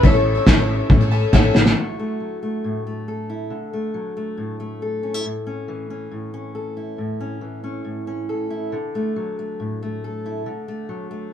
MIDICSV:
0, 0, Header, 1, 7, 480
1, 0, Start_track
1, 0, Tempo, 434153
1, 42, Time_signature, 4, 2, 24, 8
1, 12528, End_track
2, 0, Start_track
2, 0, Title_t, "Clean electric guitar"
2, 0, Program_c, 0, 27
2, 71, Note_on_c, 0, 73, 64
2, 1446, Note_off_c, 0, 73, 0
2, 12528, End_track
3, 0, Start_track
3, 0, Title_t, "Upright piano"
3, 0, Program_c, 1, 0
3, 0, Control_c, 1, 64, 127
3, 0, Note_on_c, 1, 33, 63
3, 0, Note_on_c, 1, 45, 62
3, 0, Note_on_c, 1, 61, 75
3, 0, Note_on_c, 1, 64, 64
3, 0, Note_on_c, 1, 69, 62
3, 0, Note_on_c, 1, 76, 70
3, 43, Note_off_c, 1, 61, 0
3, 43, Note_on_c, 1, 61, 75
3, 45, Note_off_c, 1, 45, 0
3, 45, Note_off_c, 1, 64, 0
3, 45, Note_on_c, 1, 45, 58
3, 45, Note_on_c, 1, 64, 85
3, 46, Note_off_c, 1, 33, 0
3, 46, Note_on_c, 1, 33, 59
3, 50, Note_off_c, 1, 69, 0
3, 50, Note_on_c, 1, 69, 82
3, 55, Note_off_c, 1, 76, 0
3, 55, Note_on_c, 1, 76, 101
3, 376, Note_off_c, 1, 61, 0
3, 377, Note_off_c, 1, 64, 0
3, 379, Note_off_c, 1, 69, 0
3, 382, Note_off_c, 1, 76, 0
3, 513, Note_on_c, 1, 61, 66
3, 517, Note_on_c, 1, 64, 55
3, 523, Note_on_c, 1, 69, 65
3, 529, Note_on_c, 1, 76, 75
3, 850, Note_off_c, 1, 61, 0
3, 852, Note_off_c, 1, 64, 0
3, 855, Note_off_c, 1, 69, 0
3, 858, Note_off_c, 1, 76, 0
3, 986, Note_on_c, 1, 61, 82
3, 995, Note_on_c, 1, 64, 69
3, 997, Note_on_c, 1, 69, 69
3, 1004, Note_on_c, 1, 76, 77
3, 1232, Note_on_c, 1, 81, 66
3, 1326, Note_off_c, 1, 61, 0
3, 1330, Note_off_c, 1, 64, 0
3, 1331, Note_off_c, 1, 69, 0
3, 1334, Note_off_c, 1, 76, 0
3, 1457, Note_off_c, 1, 81, 0
3, 1469, Note_on_c, 1, 61, 75
3, 1473, Note_on_c, 1, 64, 76
3, 1475, Note_on_c, 1, 78, 60
3, 1478, Note_on_c, 1, 69, 75
3, 1484, Note_on_c, 1, 76, 86
3, 1698, Note_off_c, 1, 78, 0
3, 1703, Note_off_c, 1, 76, 0
3, 1720, Note_on_c, 1, 76, 71
3, 1806, Note_off_c, 1, 61, 0
3, 1809, Note_off_c, 1, 64, 0
3, 1811, Note_off_c, 1, 69, 0
3, 1911, Note_off_c, 1, 45, 0
3, 1912, Note_off_c, 1, 33, 0
3, 1940, Note_off_c, 1, 76, 0
3, 1968, Control_c, 1, 64, 0
3, 12528, End_track
4, 0, Start_track
4, 0, Title_t, "Twelve-string acoustic guitar"
4, 0, Program_c, 2, 25
4, 36, Note_on_c, 2, 45, 71
4, 46, Note_on_c, 2, 52, 62
4, 50, Note_on_c, 2, 57, 75
4, 53, Note_on_c, 2, 61, 75
4, 59, Note_on_c, 2, 64, 77
4, 62, Note_on_c, 2, 69, 76
4, 143, Note_off_c, 2, 69, 0
4, 156, Note_off_c, 2, 64, 0
4, 157, Note_on_c, 2, 69, 47
4, 159, Note_off_c, 2, 45, 0
4, 164, Note_off_c, 2, 52, 0
4, 166, Note_off_c, 2, 57, 0
4, 167, Note_off_c, 2, 61, 0
4, 170, Note_on_c, 2, 64, 44
4, 180, Note_on_c, 2, 61, 38
4, 187, Note_on_c, 2, 57, 36
4, 371, Note_off_c, 2, 69, 0
4, 382, Note_off_c, 2, 64, 0
4, 384, Note_on_c, 2, 69, 48
4, 395, Note_on_c, 2, 64, 47
4, 398, Note_off_c, 2, 61, 0
4, 404, Note_off_c, 2, 57, 0
4, 411, Note_on_c, 2, 61, 45
4, 417, Note_on_c, 2, 57, 41
4, 509, Note_off_c, 2, 57, 0
4, 512, Note_off_c, 2, 69, 0
4, 512, Note_on_c, 2, 45, 72
4, 514, Note_off_c, 2, 61, 0
4, 517, Note_off_c, 2, 64, 0
4, 520, Note_on_c, 2, 52, 72
4, 523, Note_on_c, 2, 57, 77
4, 527, Note_on_c, 2, 61, 74
4, 532, Note_on_c, 2, 64, 80
4, 541, Note_on_c, 2, 69, 76
4, 620, Note_off_c, 2, 69, 0
4, 633, Note_off_c, 2, 64, 0
4, 633, Note_on_c, 2, 69, 53
4, 635, Note_off_c, 2, 45, 0
4, 639, Note_off_c, 2, 52, 0
4, 640, Note_off_c, 2, 57, 0
4, 643, Note_off_c, 2, 61, 0
4, 646, Note_on_c, 2, 64, 52
4, 656, Note_on_c, 2, 61, 50
4, 667, Note_on_c, 2, 57, 43
4, 1098, Note_off_c, 2, 69, 0
4, 1111, Note_on_c, 2, 69, 55
4, 1114, Note_off_c, 2, 64, 0
4, 1125, Note_off_c, 2, 61, 0
4, 1127, Note_on_c, 2, 64, 55
4, 1131, Note_off_c, 2, 57, 0
4, 1138, Note_on_c, 2, 61, 48
4, 1149, Note_on_c, 2, 57, 44
4, 1216, Note_off_c, 2, 57, 0
4, 1226, Note_off_c, 2, 61, 0
4, 1229, Note_on_c, 2, 57, 61
4, 1234, Note_off_c, 2, 69, 0
4, 1240, Note_on_c, 2, 61, 59
4, 1242, Note_off_c, 2, 64, 0
4, 1254, Note_on_c, 2, 64, 57
4, 1267, Note_on_c, 2, 69, 57
4, 1463, Note_off_c, 2, 57, 0
4, 1469, Note_on_c, 2, 45, 90
4, 1471, Note_off_c, 2, 61, 0
4, 1471, Note_on_c, 2, 52, 85
4, 1475, Note_off_c, 2, 64, 0
4, 1475, Note_off_c, 2, 69, 0
4, 1476, Note_on_c, 2, 57, 89
4, 1485, Note_on_c, 2, 61, 81
4, 1489, Note_on_c, 2, 64, 87
4, 1489, Note_on_c, 2, 69, 80
4, 1692, Note_off_c, 2, 57, 0
4, 1706, Note_on_c, 2, 57, 53
4, 1710, Note_off_c, 2, 61, 0
4, 1712, Note_off_c, 2, 45, 0
4, 1713, Note_off_c, 2, 52, 0
4, 1722, Note_off_c, 2, 64, 0
4, 1722, Note_off_c, 2, 69, 0
4, 1723, Note_on_c, 2, 61, 55
4, 1734, Note_on_c, 2, 64, 69
4, 1744, Note_on_c, 2, 69, 75
4, 1811, Note_off_c, 2, 69, 0
4, 1824, Note_on_c, 2, 69, 56
4, 1826, Note_off_c, 2, 64, 0
4, 1830, Note_off_c, 2, 57, 0
4, 1839, Note_off_c, 2, 61, 0
4, 1839, Note_on_c, 2, 64, 57
4, 1851, Note_on_c, 2, 61, 48
4, 1859, Note_on_c, 2, 57, 40
4, 1949, Note_off_c, 2, 69, 0
4, 1957, Note_off_c, 2, 64, 0
4, 1963, Note_off_c, 2, 61, 0
4, 1967, Note_off_c, 2, 57, 0
4, 12528, End_track
5, 0, Start_track
5, 0, Title_t, "Steel-string acoustic guitar"
5, 0, Program_c, 3, 25
5, 1950, Note_on_c, 3, 50, 42
5, 1955, Note_on_c, 3, 54, 34
5, 1966, Note_on_c, 3, 57, 33
5, 1973, Note_on_c, 3, 64, 36
5, 1977, Note_on_c, 3, 66, 38
5, 2201, Note_off_c, 3, 57, 0
5, 2206, Note_on_c, 3, 57, 39
5, 2430, Note_off_c, 3, 54, 0
5, 2434, Note_on_c, 3, 54, 35
5, 2678, Note_off_c, 3, 57, 0
5, 2682, Note_on_c, 3, 57, 36
5, 2921, Note_on_c, 3, 45, 45
5, 3165, Note_off_c, 3, 57, 0
5, 3169, Note_on_c, 3, 57, 35
5, 3401, Note_off_c, 3, 66, 0
5, 3406, Note_on_c, 3, 69, 40
5, 3639, Note_off_c, 3, 64, 0
5, 3643, Note_on_c, 3, 64, 40
5, 3843, Note_off_c, 3, 50, 0
5, 3846, Note_off_c, 3, 54, 0
5, 3849, Note_off_c, 3, 45, 0
5, 3872, Note_on_c, 3, 50, 42
5, 3906, Note_off_c, 3, 64, 0
5, 4123, Note_off_c, 3, 57, 0
5, 4128, Note_on_c, 3, 57, 38
5, 4359, Note_on_c, 3, 54, 44
5, 4603, Note_off_c, 3, 57, 0
5, 4607, Note_on_c, 3, 57, 39
5, 4836, Note_on_c, 3, 45, 44
5, 5080, Note_off_c, 3, 57, 0
5, 5084, Note_on_c, 3, 57, 41
5, 5325, Note_off_c, 3, 69, 0
5, 5330, Note_on_c, 3, 69, 40
5, 5563, Note_on_c, 3, 61, 38
5, 5685, Note_off_c, 3, 61, 0
5, 5685, Note_on_c, 3, 64, 35
5, 5767, Note_off_c, 3, 50, 0
5, 5768, Note_off_c, 3, 45, 0
5, 5770, Note_off_c, 3, 54, 0
5, 5798, Note_on_c, 3, 45, 41
5, 5801, Note_off_c, 3, 64, 0
5, 6039, Note_off_c, 3, 57, 0
5, 6043, Note_on_c, 3, 61, 41
5, 6282, Note_on_c, 3, 52, 45
5, 6522, Note_off_c, 3, 61, 0
5, 6526, Note_on_c, 3, 61, 40
5, 6755, Note_off_c, 3, 45, 0
5, 6760, Note_on_c, 3, 45, 44
5, 6993, Note_off_c, 3, 61, 0
5, 7006, Note_on_c, 3, 61, 40
5, 7235, Note_off_c, 3, 69, 0
5, 7239, Note_on_c, 3, 69, 40
5, 7482, Note_on_c, 3, 64, 34
5, 7690, Note_off_c, 3, 45, 0
5, 7694, Note_off_c, 3, 61, 0
5, 7719, Note_on_c, 3, 45, 42
5, 7966, Note_on_c, 3, 61, 39
5, 8190, Note_off_c, 3, 52, 0
5, 8194, Note_on_c, 3, 52, 39
5, 8430, Note_off_c, 3, 61, 0
5, 8443, Note_on_c, 3, 61, 37
5, 8661, Note_off_c, 3, 45, 0
5, 8674, Note_on_c, 3, 45, 42
5, 8911, Note_off_c, 3, 61, 0
5, 8924, Note_on_c, 3, 61, 37
5, 9163, Note_off_c, 3, 69, 0
5, 9167, Note_on_c, 3, 69, 36
5, 9398, Note_off_c, 3, 64, 0
5, 9402, Note_on_c, 3, 64, 38
5, 9608, Note_off_c, 3, 45, 0
5, 9613, Note_off_c, 3, 61, 0
5, 9643, Note_on_c, 3, 50, 46
5, 9676, Note_off_c, 3, 64, 0
5, 9896, Note_on_c, 3, 57, 41
5, 10125, Note_off_c, 3, 52, 0
5, 10130, Note_on_c, 3, 54, 44
5, 10376, Note_off_c, 3, 57, 0
5, 10380, Note_on_c, 3, 57, 34
5, 10611, Note_on_c, 3, 45, 45
5, 10859, Note_off_c, 3, 57, 0
5, 10863, Note_on_c, 3, 57, 42
5, 11098, Note_off_c, 3, 69, 0
5, 11103, Note_on_c, 3, 69, 39
5, 11340, Note_on_c, 3, 64, 40
5, 11534, Note_off_c, 3, 50, 0
5, 11537, Note_off_c, 3, 45, 0
5, 11537, Note_off_c, 3, 54, 0
5, 11565, Note_on_c, 3, 50, 51
5, 11598, Note_off_c, 3, 64, 0
5, 11806, Note_off_c, 3, 57, 0
5, 11810, Note_on_c, 3, 57, 42
5, 12039, Note_on_c, 3, 54, 43
5, 12277, Note_off_c, 3, 57, 0
5, 12281, Note_on_c, 3, 57, 37
5, 12528, Note_off_c, 3, 50, 0
5, 12528, Note_off_c, 3, 54, 0
5, 12528, Note_off_c, 3, 57, 0
5, 12528, Note_off_c, 3, 69, 0
5, 12528, End_track
6, 0, Start_track
6, 0, Title_t, "Fingered electric bass"
6, 0, Program_c, 4, 33
6, 37, Note_on_c, 4, 33, 93
6, 403, Note_off_c, 4, 33, 0
6, 515, Note_on_c, 4, 33, 91
6, 880, Note_off_c, 4, 33, 0
6, 994, Note_on_c, 4, 45, 96
6, 1360, Note_off_c, 4, 45, 0
6, 1469, Note_on_c, 4, 33, 89
6, 1654, Note_off_c, 4, 33, 0
6, 1712, Note_on_c, 4, 33, 82
6, 1896, Note_off_c, 4, 33, 0
6, 12528, End_track
7, 0, Start_track
7, 0, Title_t, "Drums"
7, 39, Note_on_c, 9, 36, 99
7, 149, Note_off_c, 9, 36, 0
7, 515, Note_on_c, 9, 38, 113
7, 516, Note_on_c, 9, 36, 81
7, 625, Note_off_c, 9, 38, 0
7, 626, Note_off_c, 9, 36, 0
7, 993, Note_on_c, 9, 36, 97
7, 1104, Note_off_c, 9, 36, 0
7, 1470, Note_on_c, 9, 38, 55
7, 1471, Note_on_c, 9, 36, 74
7, 1580, Note_off_c, 9, 38, 0
7, 1582, Note_off_c, 9, 36, 0
7, 1711, Note_on_c, 9, 38, 75
7, 1822, Note_off_c, 9, 38, 0
7, 1831, Note_on_c, 9, 38, 71
7, 1942, Note_off_c, 9, 38, 0
7, 12528, End_track
0, 0, End_of_file